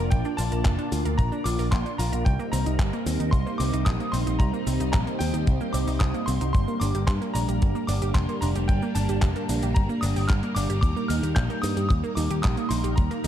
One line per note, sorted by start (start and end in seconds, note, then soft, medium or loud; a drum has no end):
0.00 2.22 A#3 medium
0.00 2.22 D4 medium
0.00 2.22 F4 medium
0.00 2.22 D5 medium
0.00 0.12 A#5 medium
0.10 0.22 A#1 loud
0.10 0.24 A#3 medium
0.10 0.39 G5 medium
0.10 kick loud
0.10 closed hi-hat medium
0.10 cabasa soft
0.25 0.33 D4 loud
0.25 cabasa soft
0.37 0.49 A#1 medium
0.37 0.51 F4 loud
0.37 0.88 A5 loud
0.37 open hi-hat loud
0.37 cabasa medium
0.52 0.62 A#1 medium
0.52 0.60 A#4 loud
0.52 closed hi-hat medium
0.52 cabasa soft
0.65 0.76 F1 loud
0.65 0.77 A#3 medium
0.65 kick loud
0.65 clap loud
0.65 closed hi-hat medium
0.65 cabasa soft
0.79 0.87 D4 loud
0.79 closed hi-hat soft
0.79 cabasa soft
0.92 1.03 D2 medium
0.92 1.04 F4 loud
0.92 open hi-hat loud
0.92 cabasa medium
1.05 1.16 D2 medium
1.05 1.13 A#4 loud
1.05 closed hi-hat medium
1.05 cabasa soft
1.18 1.29 A#1 loud
1.18 1.31 A#3 medium
1.18 1.46 A#5 loud
1.18 kick loud
1.18 closed hi-hat medium
1.18 cabasa soft
1.32 1.40 D4 loud
1.32 cabasa soft
1.44 1.56 A#1 medium
1.44 1.58 F4 loud
1.44 1.73 D6 loud
1.44 open hi-hat loud
1.44 cabasa medium
1.59 1.70 A#1 medium
1.59 1.67 A#4 loud
1.59 open hi-hat medium
1.59 cabasa soft
1.71 1.83 A#1 loud
1.71 1.85 A#3 medium
1.71 1.99 C6 loud
1.71 kick loud
1.71 clap loud
1.71 closed hi-hat medium
1.71 cabasa soft
1.86 1.94 D4 medium
1.86 closed hi-hat soft
1.86 cabasa soft
1.98 2.10 A#1 medium
1.98 2.11 F4 loud
1.98 2.26 A#5 medium
1.98 open hi-hat loud
1.98 cabasa medium
2.12 2.23 A#1 medium
2.12 2.21 A#4 loud
2.12 closed hi-hat medium
2.12 cabasa soft
2.25 2.37 C2 loud
2.25 2.38 G3 medium
2.25 13.27 G3 medium
2.25 6.51 C4 medium
2.25 6.50 D#4 medium
2.25 4.38 A#4 medium
2.25 2.53 G5 medium
2.25 kick loud
2.25 closed hi-hat medium
2.25 cabasa soft
2.39 2.47 A#3 loud
2.39 cabasa soft
2.52 2.63 C2 medium
2.52 2.65 C4 loud
2.52 3.02 A#5 medium
2.52 open hi-hat loud
2.52 cabasa medium
2.66 2.77 C2 medium
2.66 2.74 D#4 loud
2.66 closed hi-hat soft
2.66 cabasa soft
2.79 2.90 G1 loud
2.79 2.92 G3 medium
2.79 kick loud
2.79 clap loud
2.79 closed hi-hat medium
2.79 cabasa soft
2.93 3.01 A#3 loud
2.93 closed hi-hat soft
2.93 cabasa soft
3.06 3.17 D#2 medium
3.06 3.19 C4 medium
3.06 open hi-hat loud
3.06 cabasa medium
3.20 3.30 D#2 medium
3.20 3.28 D#4 medium
3.20 closed hi-hat medium
3.20 cabasa soft
3.31 3.43 C2 loud
3.31 3.45 G3 medium
3.31 3.57 C6 loud
3.31 kick loud
3.31 closed hi-hat medium
3.31 cabasa soft
3.46 3.55 A#3 loud
3.46 cabasa soft
3.58 3.70 C2 loud
3.58 3.72 C4 loud
3.58 3.84 D6 loud
3.58 open hi-hat loud
3.58 cabasa medium
3.73 3.84 C2 medium
3.73 3.81 D#4 loud
3.73 closed hi-hat medium
3.73 cabasa soft
3.85 3.97 A#1 loud
3.85 3.99 G3 medium
3.85 4.13 D#6 loud
3.85 kick loud
3.85 clap loud
3.85 closed hi-hat medium
3.85 cabasa soft
4.00 4.08 A#3 loud
4.00 closed hi-hat soft
4.00 cabasa soft
4.12 4.24 A#1 medium
4.12 4.26 C4 loud
4.12 4.40 C6 loud
4.12 open hi-hat loud
4.12 cabasa medium
4.26 4.37 A#1 medium
4.26 4.35 D#4 loud
4.26 closed hi-hat medium
4.26 cabasa soft
4.39 4.50 C2 loud
4.39 4.52 G3 medium
4.39 6.52 C5 medium
4.39 4.89 A#5 loud
4.39 kick loud
4.39 closed hi-hat medium
4.39 cabasa soft
4.53 4.62 A#3 loud
4.53 cabasa soft
4.67 4.78 C2 medium
4.67 4.79 C4 loud
4.67 open hi-hat loud
4.67 cabasa medium
4.80 4.91 C2 medium
4.80 4.88 D#4 loud
4.80 closed hi-hat medium
4.80 cabasa soft
4.92 5.05 A#1 loud
4.92 5.06 G3 medium
4.92 4.98 A#5 medium
4.92 kick loud
4.92 clap loud
4.92 closed hi-hat medium
4.92 cabasa soft
5.07 5.15 A#3 loud
5.07 closed hi-hat soft
5.07 cabasa soft
5.19 5.31 D#2 medium
5.19 5.33 C4 loud
5.19 5.75 G5 medium
5.19 open hi-hat loud
5.19 cabasa medium
5.34 5.44 D#2 medium
5.34 5.42 D#4 loud
5.34 closed hi-hat soft
5.34 cabasa soft
5.47 5.58 C2 loud
5.47 5.59 G3 medium
5.47 kick loud
5.47 closed hi-hat medium
5.47 cabasa soft
5.61 5.69 A#3 loud
5.61 cabasa soft
5.73 5.85 C2 medium
5.73 5.86 C4 loud
5.73 5.98 D6 medium
5.73 open hi-hat loud
5.73 cabasa medium
5.87 5.98 C2 medium
5.87 5.96 D#4 loud
5.87 open hi-hat medium
5.87 cabasa soft
5.99 6.11 C2 loud
5.99 6.13 G3 medium
5.99 6.28 D#6 loud
5.99 kick loud
5.99 clap loud
5.99 closed hi-hat medium
5.99 cabasa soft
6.14 6.22 A#3 loud
6.14 closed hi-hat soft
6.14 cabasa soft
6.26 6.38 C2 medium
6.26 6.40 C4 loud
6.26 6.51 C6 loud
6.26 open hi-hat loud
6.26 cabasa medium
6.41 6.52 C2 medium
6.41 6.49 D#4 loud
6.41 closed hi-hat medium
6.41 cabasa soft
6.53 6.65 G1 loud
6.53 6.67 G3 medium
6.53 13.27 A#3 medium
6.53 10.79 D4 medium
6.53 13.27 A#4 medium
6.53 6.81 C6 loud
6.53 kick loud
6.53 closed hi-hat medium
6.53 cabasa soft
6.68 6.76 A#3 loud
6.68 cabasa soft
6.80 6.92 G1 medium
6.80 6.93 D4 loud
6.80 7.08 D6 loud
6.80 open hi-hat loud
6.80 cabasa medium
6.94 7.05 G1 medium
6.94 7.03 G4 loud
6.94 closed hi-hat medium
6.94 cabasa soft
7.07 7.18 G2 loud
7.07 7.20 G3 medium
7.07 7.13 C6 medium
7.07 kick loud
7.07 clap loud
7.07 closed hi-hat medium
7.07 cabasa soft
7.21 7.30 A#3 loud
7.21 closed hi-hat soft
7.21 cabasa soft
7.34 7.45 A#1 medium
7.34 7.47 D4 loud
7.34 7.89 A#5 loud
7.34 open hi-hat loud
7.34 cabasa medium
7.48 7.59 A#1 medium
7.48 7.56 G4 loud
7.48 closed hi-hat soft
7.48 cabasa soft
7.62 7.73 G1 loud
7.62 7.74 G3 medium
7.62 kick loud
7.62 closed hi-hat medium
7.62 cabasa soft
7.75 7.83 A#3 loud
7.75 cabasa soft
7.87 7.99 G1 medium
7.87 8.01 D4 loud
7.87 8.15 D6 medium
7.87 open hi-hat loud
7.87 cabasa medium
8.02 8.12 G1 medium
8.02 8.10 G4 loud
8.02 closed hi-hat medium
8.02 cabasa soft
8.14 8.26 F1 loud
8.14 8.28 G3 medium
8.14 8.42 C6 loud
8.14 kick loud
8.14 clap loud
8.14 closed hi-hat medium
8.14 cabasa soft
8.29 8.37 A#3 loud
8.29 closed hi-hat soft
8.29 cabasa soft
8.41 8.53 F1 medium
8.41 8.54 D4 loud
8.41 8.47 A#5 medium
8.41 open hi-hat loud
8.41 cabasa medium
8.55 8.66 F1 medium
8.55 8.64 G4 loud
8.55 closed hi-hat medium
8.55 cabasa soft
8.68 8.79 G1 loud
8.68 8.81 G3 medium
8.68 8.96 G5 medium
8.68 kick loud
8.68 closed hi-hat medium
8.68 cabasa soft
8.82 8.90 A#3 loud
8.82 cabasa soft
8.95 9.06 G1 medium
8.95 9.08 D4 loud
8.95 9.45 A5 medium
8.95 open hi-hat loud
8.95 cabasa medium
9.09 9.20 G1 medium
9.09 9.17 G4 loud
9.09 closed hi-hat medium
9.09 cabasa soft
9.22 9.33 F1 loud
9.22 9.35 G3 medium
9.22 kick loud
9.22 clap loud
9.22 closed hi-hat medium
9.22 cabasa soft
9.36 9.44 A#3 loud
9.36 closed hi-hat soft
9.36 cabasa soft
9.49 9.60 A#1 medium
9.49 9.62 D4 loud
9.49 open hi-hat loud
9.49 cabasa medium
9.62 9.73 A#1 medium
9.62 9.71 G4 loud
9.62 closed hi-hat soft
9.62 cabasa soft
9.74 9.87 G1 loud
9.74 9.88 G3 medium
9.74 10.03 A#5 medium
9.74 kick loud
9.74 closed hi-hat medium
9.74 cabasa soft
9.89 9.97 A#3 loud
9.89 cabasa soft
10.01 10.13 G1 medium
10.01 10.15 D4 loud
10.01 10.29 D#6 medium
10.01 open hi-hat loud
10.01 cabasa medium
10.16 10.27 G1 medium
10.16 10.24 G4 loud
10.16 open hi-hat medium
10.16 cabasa soft
10.28 10.40 G1 loud
10.28 10.42 G3 medium
10.28 10.56 F6 loud
10.28 kick loud
10.28 clap loud
10.28 closed hi-hat medium
10.28 cabasa soft
10.43 10.51 A#3 loud
10.43 closed hi-hat soft
10.43 cabasa soft
10.55 10.67 G1 loud
10.55 10.68 D4 loud
10.55 10.80 D6 loud
10.55 open hi-hat loud
10.55 cabasa medium
10.69 10.80 G1 medium
10.69 10.78 G4 loud
10.69 closed hi-hat medium
10.69 cabasa soft
10.81 10.93 D#2 loud
10.81 10.95 G3 medium
10.81 13.27 D#4 medium
10.81 11.10 D6 loud
10.81 kick loud
10.81 closed hi-hat medium
10.81 cabasa soft
10.96 11.05 A#3 loud
10.96 cabasa soft
11.08 11.20 D#2 medium
11.08 11.22 D#4 loud
11.08 11.37 F6 loud
11.08 open hi-hat loud
11.08 cabasa medium
11.23 11.34 D#2 medium
11.23 11.31 G4 loud
11.23 closed hi-hat medium
11.23 cabasa soft
11.35 11.47 A#1 loud
11.35 11.49 G3 medium
11.35 11.61 G6 loud
11.35 kick loud
11.35 clap loud
11.35 closed hi-hat medium
11.35 cabasa soft
11.50 11.58 A#3 loud
11.50 closed hi-hat soft
11.50 cabasa soft
11.62 11.74 G2 loud
11.62 11.76 D#4 loud
11.62 11.87 D#6 loud
11.62 open hi-hat loud
11.62 cabasa medium
11.77 11.87 G2 medium
11.77 11.85 G4 loud
11.77 closed hi-hat medium
11.77 cabasa soft
11.89 12.01 D#2 loud
11.89 12.02 G3 medium
11.89 11.95 D#6 loud
11.89 kick loud
11.89 closed hi-hat medium
11.89 cabasa soft
12.04 12.12 A#3 loud
12.04 cabasa soft
12.15 12.28 D#2 loud
12.15 12.29 D#4 loud
12.15 12.44 D6 medium
12.15 open hi-hat loud
12.15 cabasa medium
12.30 12.41 D#2 medium
12.30 12.39 G4 loud
12.30 closed hi-hat medium
12.30 cabasa soft
12.42 12.55 A#1 loud
12.42 12.56 G3 medium
12.42 12.71 D#6 loud
12.42 kick loud
12.42 clap loud
12.42 closed hi-hat medium
12.42 cabasa soft
12.57 12.65 A#3 loud
12.57 closed hi-hat soft
12.57 cabasa soft
12.69 12.81 A#1 loud
12.69 12.83 D#4 loud
12.69 12.95 C6 medium
12.69 open hi-hat loud
12.69 cabasa medium
12.84 12.95 A#1 medium
12.84 12.92 G4 loud
12.84 closed hi-hat medium
12.84 cabasa soft
12.96 13.08 D#2 loud
12.96 13.10 G3 medium
12.96 13.27 A#5 medium
12.96 kick loud
12.96 closed hi-hat medium
12.96 cabasa soft
13.11 13.19 A#3 loud
13.11 closed hi-hat soft
13.11 cabasa soft
13.24 13.27 D#2 loud
13.24 13.27 D#4 loud